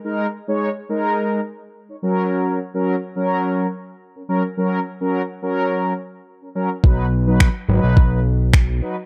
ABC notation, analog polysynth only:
X:1
M:4/4
L:1/16
Q:1/4=106
K:F#mix
V:1 name="Analog polysynth"
[G,DA]2 z [G,Dc]2 z [G,DA]4 z3 [Dc] [F,CA]2- | [F,CA]2 z [F,CA]2 z [F,CA]4 z3 [CA] [F,CA] z | [F,CA]2 z [F,CA]2 z [F,CA]4 z3 [CA] [F,CA] z | [F,DB]2 z [F,DB]2 z [F,DB]4 z3 [DB] [F,DB] z |]